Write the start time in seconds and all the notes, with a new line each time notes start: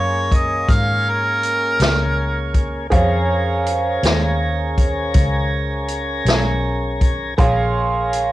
Already playing: F#2 A#3 C#4 G#4 C#5 F5 C6
0.31 D#5, kick, closed hi-hat
0.68 G#2 F5, kick, closed hi-hat
1.10 A#4
1.43 closed hi-hat
1.80 C#2, snare, closed hi-hat
2.54 kick, closed hi-hat
2.90 F2 C#4 G#4 A#4 C5 C#5 F5, kick, closed hi-hat
3.66 closed hi-hat
4.03 D#2, snare, closed hi-hat
4.78 kick, closed hi-hat
5.14 C#2, kick, closed hi-hat
5.88 closed hi-hat
6.25 B1, snare, closed hi-hat
7.01 kick, closed hi-hat
7.37 A#1 G#4 A#4 C#5 F5 C6, kick, closed hi-hat
8.13 closed hi-hat